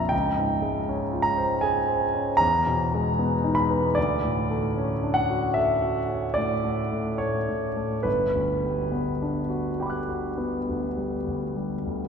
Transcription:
Already playing: A#1 F2 A#3 D4 F4 E5 A5 A#5
0.09 C#2 G5
0.37 G#2
0.62 G#3
0.89 C#4
1.13 F4
1.22 A#5
1.38 C5
1.61 G#4 G#5
1.88 C5
2.14 C#4
2.37 E2 A#5
2.67 B2
2.94 G#3
3.19 B3
3.44 D#4
3.55 B5
3.70 B4
3.95 D2 D5
4.24 A2
4.51 A3
4.77 C#4
5.03 D4
5.14 F#5
5.30 F#4
5.54 A4 E5
5.82 F#4
6.09 C#4
6.34 A2 D5
6.64 A3
6.92 A2
7.18 A3 C#5
7.49 A2
7.77 A3
8.03 G1 B4
8.35 D2
8.65 G3
8.92 B3
9.22 D4
9.50 F#4
9.80 G4 G5 B5
9.86 D6 F#6
10.09 F#4
10.38 B3
10.69 D2
10.97 G3
11.27 D2
11.56 G3
11.86 D2

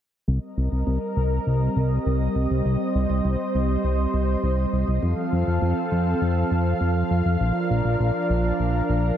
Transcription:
0.28 C2 G3 C4 A#4 D#5
0.57 C2
0.72 C2
0.87 C2
1.17 C2
1.46 C2
1.76 C2
2.06 C2
2.36 C2
2.51 C2
2.65 C2 C5
2.95 C2
3.10 C2
3.25 C2
3.55 C2
3.84 C2
4.14 C2
4.43 C2
4.73 C2
4.88 C2
5.03 F2 F3 C4 A4 F5
5.32 F2
5.47 F2
5.62 F2
5.92 F2
6.22 F2
6.51 F2
6.81 F2
7.11 F2
7.26 F2
7.41 A#1 D4 A#4
7.70 A#1
7.85 A#1
8.00 A#1
8.30 A#1
8.59 A#1
8.89 A#1

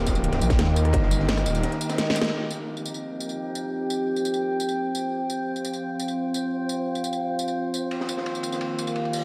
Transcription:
Already playing: D#1 D#3 A#3 D#4 G4
0.06 kick, snare, closed hi-hat, ride, tambourine
0.15 closed hi-hat, tambourine
0.24 closed hi-hat, ride
0.32 snare, closed hi-hat, ride
0.41 A#1, closed hi-hat, tambourine
0.50 kick, snare, closed hi-hat, ride, tambourine
0.59 D#2, snare, closed hi-hat, ride
0.76 closed hi-hat, ride, tambourine
0.85 cross-stick, closed hi-hat, ride
0.93 G1, kick, closed hi-hat, ride
1.02 snare
1.11 closed hi-hat, ride, tambourine
1.19 snare
1.28 snare, closed hi-hat, ride
1.37 cross-stick, snare, tambourine
1.46 D#1, closed hi-hat, ride, tambourine
1.55 snare, closed hi-hat, tambourine
1.63 snare, closed hi-hat, ride
1.72 snare, closed hi-hat
1.81 closed hi-hat, ride, tambourine
1.89 snare, closed hi-hat, ride, tambourine
1.98 snare, closed hi-hat
2.07 snare, ride
2.15 snare, closed hi-hat, ride, tambourine
2.21 snare, closed hi-hat
2.33 F3 C4 G4 G5
2.51 tambourine
2.77 tambourine
2.86 tambourine
2.94 tambourine
3.20 tambourine
3.29 tambourine
3.55 tambourine
3.90 tambourine
4.16 tambourine
4.25 tambourine
4.34 tambourine
4.60 tambourine
4.69 tambourine
4.95 tambourine
5.12 F4
5.30 tambourine
5.56 tambourine
5.65 tambourine
5.73 tambourine
6.00 tambourine
6.08 tambourine
6.34 tambourine
6.69 tambourine
6.95 tambourine
7.04 tambourine
7.13 tambourine
7.39 tambourine
7.48 tambourine
7.74 tambourine
7.91 D#3 A#3 G4, ride
8.01 snare
8.09 ride, tambourine
8.17 snare
8.26 ride
8.35 tambourine
8.43 ride, tambourine
8.52 snare, tambourine
8.61 ride
8.79 ride, tambourine
8.87 ride, tambourine
8.95 ride
9.05 ride
9.13 open hi-hat, tambourine

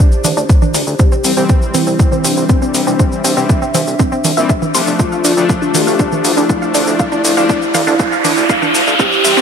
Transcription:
Already playing: E4 G4 C5 D5
0.00 D4
0.12 shaker
0.24 D2 D4, open hi-hat, low conga, shaker
0.37 D2 D4, shaker
0.49 kick, shaker
0.62 D4, low conga, shaker
0.74 D2 D4, open hi-hat, shaker
0.87 D2, shaker
0.99 C4 G4, kick, shaker
1.12 C4, shaker
1.24 C2 E3 G3 C4, open hi-hat, shaker
1.37 C2 E3 G3 C4, shaker
1.49 C4, kick, shaker
1.62 shaker
1.74 C2 C4 E4, open hi-hat, low conga, shaker
1.87 C2 C4, shaker
1.99 kick, shaker
2.12 C4, low conga, shaker
2.24 C2 C4 D4, open hi-hat, shaker
2.37 C2, shaker
2.49 C4, kick, shaker
2.62 C4, shaker
2.74 C2 E5, open hi-hat, shaker
2.87 C2 C4, shaker
2.99 C4, kick, shaker
3.12 shaker
3.24 C2 E3 G3 C4, open hi-hat, shaker
3.37 C2 E3 G3 C4, shaker
3.49 kick, shaker
3.62 C4, shaker
3.74 C2 C4, open hi-hat, low conga, shaker
3.87 C2, shaker
3.99 C4, kick, shaker
4.12 C4, shaker
4.24 C2, open hi-hat, low conga, shaker
4.37 A#1 E3 G3 C4 E5, shaker
4.49 E5, kick, shaker
4.62 E4, low conga, shaker
4.74 C2 F3 A3 D4 C6, open hi-hat, shaker
4.87 G1 C4, shaker
4.99 F4, kick, riser, shaker
5.12 F5, shaker
5.24 D2 F3 A3 D4, open hi-hat, shaker
5.37 D2 F3 A3 D4, shaker
5.49 F5, kick, shaker
5.62 D4, shaker
5.74 D2 G4, open hi-hat, low conga, shaker
5.87 D2 F5, shaker
5.99 D4, kick, shaker
6.12 low conga, shaker
6.24 D2 E4 F5, open hi-hat, shaker
6.37 D2 D4, shaker
6.50 D5, kick, shaker
6.62 F5, shaker
6.74 D2 D4, open hi-hat, shaker
6.87 D2, shaker
6.99 F5, kick, shaker
7.12 D4, shaker
7.24 D2 F3 A3 D4, open hi-hat, shaker
7.37 D2 F3 A3 D4 F5, shaker
7.49 D4, kick, shaker
7.62 shaker
7.74 D2 F5, open hi-hat, low conga, shaker
7.87 D2 D4, shaker
8.00 kick, shaker
8.12 F5, shaker
8.24 D2 D4, open hi-hat, low conga, shaker
8.37 D2, shaker
8.49 F5, kick, shaker
8.62 D4, low conga, shaker
8.74 D2, open hi-hat, shaker
8.87 D2 F5, shaker
8.99 C4 G4, kick, shaker
9.12 shaker
9.24 C2 E3 G3 C4 E5, open hi-hat, shaker
9.37 C2 C4, shaker

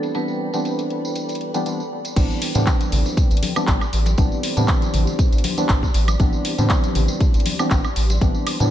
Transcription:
Already playing: E3 G3 B3 C4 D4 A4 D5 G5 A5 B5
0.03 closed hi-hat, tambourine
0.15 E3 G3 B3 C4 D4 B4, closed hi-hat, tambourine
0.28 tambourine
0.54 E3 G3 B3 C4 D4, closed hi-hat, tambourine
0.65 closed hi-hat, tambourine
0.79 closed hi-hat, tambourine
0.90 closed hi-hat
1.05 tambourine
1.15 closed hi-hat, tambourine
1.29 closed hi-hat, tambourine
1.35 closed hi-hat
1.41 closed hi-hat
1.54 E3 G3 B3 C4 D4, closed hi-hat, tambourine
1.66 E3 G3 B3 C4 D4, closed hi-hat, tambourine
1.80 tambourine
2.05 closed hi-hat, tambourine
2.16 A1 E3 G3 B3 C4 D4 G4, kick, closed hi-hat, crash, tambourine, high conga
2.30 tambourine
2.42 open hi-hat
2.55 A2 E3 G3 B3 C4 D4, closed hi-hat, tambourine, low conga
2.67 kick, clap, closed hi-hat, tambourine
2.80 closed hi-hat, tambourine, muted conga, high conga
2.85 C6
2.92 A1, open hi-hat, low conga
3.06 tambourine, muted conga
3.17 kick, closed hi-hat, tambourine
3.31 A1, closed hi-hat, tambourine
3.37 closed hi-hat
3.43 open hi-hat, high conga
3.56 E3 G3 B3 C4 D4, closed hi-hat, tambourine, high woodblock
3.67 A1 E3 G3 B3 C4 D4, kick, clap, closed hi-hat, tambourine
3.81 tambourine, high woodblock
3.93 A1, open hi-hat
4.06 closed hi-hat, tambourine, muted conga
4.18 A1 E3 G3 B3 C4 D4, kick, closed hi-hat, tambourine, high conga
4.32 tambourine
4.43 open hi-hat
4.57 A2 E3 G3 B3 C4 D4, closed hi-hat, tambourine, low conga
4.68 kick, clap, closed hi-hat, tambourine
4.82 closed hi-hat, tambourine, high conga
4.94 A1, open hi-hat, low conga
5.07 tambourine, muted conga
5.19 kick, closed hi-hat, tambourine
5.32 A1, closed hi-hat, tambourine
5.38 closed hi-hat
5.44 open hi-hat, high conga
5.57 E3 G3 B3 C4 D4, closed hi-hat, tambourine, muted conga
5.69 A1 E3 G3, kick, clap, closed hi-hat, tambourine
5.83 kick, tambourine
5.94 A1, open hi-hat
6.08 closed hi-hat, tambourine, muted conga, high woodblock
6.20 A1 E3 G3 B3 C4 D4, kick, closed hi-hat, tambourine, high conga
6.33 tambourine
6.45 open hi-hat
6.58 A2 E3 G3 B3 C4 D4, closed hi-hat, tambourine, low conga
6.70 kick, clap, closed hi-hat, tambourine
6.84 closed hi-hat, tambourine, muted conga, high conga
6.95 A1, open hi-hat, low conga
7.08 tambourine, muted conga
7.20 kick, closed hi-hat, tambourine
7.34 A1, closed hi-hat, tambourine
7.40 closed hi-hat
7.46 open hi-hat, high conga
7.59 E3 G3 B3 C4 D4, tambourine, high woodblock
7.71 A1 E3 G3 B3 C4 D4, kick, clap, closed hi-hat, tambourine
7.84 tambourine, high woodblock
7.96 A1, open hi-hat
8.10 closed hi-hat, tambourine, muted conga
8.21 A1 E3 G3 B3 C4 D4, kick, closed hi-hat, tambourine, high conga
8.34 tambourine
8.47 open hi-hat, high woodblock
8.60 A2 E3 G3 B3 C4 D4, closed hi-hat, tambourine, low conga

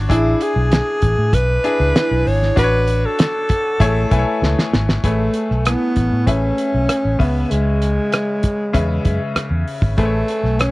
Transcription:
Already playing: D4 F4 F#4 C#5
0.09 A1 D4 E4 G#4, kick, closed hi-hat
0.41 G#4, closed hi-hat
0.56 B1
0.72 snare, closed hi-hat
1.02 A1, kick, closed hi-hat
1.18 A2
1.33 B1 B4, kick, closed hi-hat
1.64 D4 E4 G#4, closed hi-hat
1.80 C#2
1.95 E4, snare, closed hi-hat
2.11 B1
2.26 G#1 C#5, open hi-hat
2.42 snare
2.56 A1 D4 F#4 B4, kick, closed hi-hat
2.64 C#5
2.88 F#4, closed hi-hat
3.06 A4
3.19 snare, closed hi-hat
3.49 kick, closed hi-hat
3.80 A1 A3 E4 G#4 C#5, kick, closed hi-hat
4.11 B1 A3 E4 B4 G#5, kick, closed hi-hat
4.19 C#5
4.42 C#2, snare
4.59 snare
4.74 G#1, snare
4.89 snare
5.04 A1 A3 G#4 B4 C#5, kick, closed hi-hat
5.34 closed hi-hat
5.51 B1, cross-stick
5.65 B3 E4, cross-stick, closed hi-hat
5.96 A1, kick, closed hi-hat
6.13 A2
6.26 A1 A3 C#4 G#4 B4 E5, kick, closed hi-hat
6.58 closed hi-hat
6.74 B1
6.89 cross-stick, closed hi-hat
7.05 A1
7.19 C#2 C#3 B3 C#4 B4 E5, kick, open hi-hat
7.51 C#2 G#3, closed hi-hat
7.82 closed hi-hat
8.12 cross-stick, closed hi-hat
8.43 kick, closed hi-hat
8.73 E2 C#3 C#4 B4 E5, kick, closed hi-hat
9.05 F#2, kick, closed hi-hat
9.36 muted fingered electric bass stroke, cross-stick, closed hi-hat
9.51 E2
9.68 open hi-hat
9.82 G#1, kick
9.98 A1 A3 G#4 B4 C5, kick, closed hi-hat
10.05 C#5
10.28 closed hi-hat
10.44 B1, cross-stick
10.59 C#4, cross-stick, closed hi-hat

